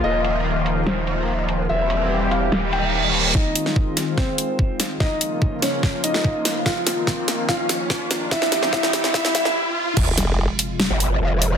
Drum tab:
CC |----------------|----------------|----------------|----------------|
HH |--x---x---x---x-|--x---x---x---x-|--x---x---x---x-|--x---x---x---x-|
SD |--------o-------|--------o-------|o--o--o-o-----o-|o-----o-o--o--o-|
BD |----------------|----------------|o---o---o---o---|o---o---o---o---|

CC |----------------|----------------|x---------------|
HH |--x---x---x---x-|--x---x---x-----|--x---o---x---x-|
SD |o-o-o-o-o-o-o-o-|oooooooooooo----|--o-----o-------|
BD |o---o---o---o---|o---o---o-------|o---------------|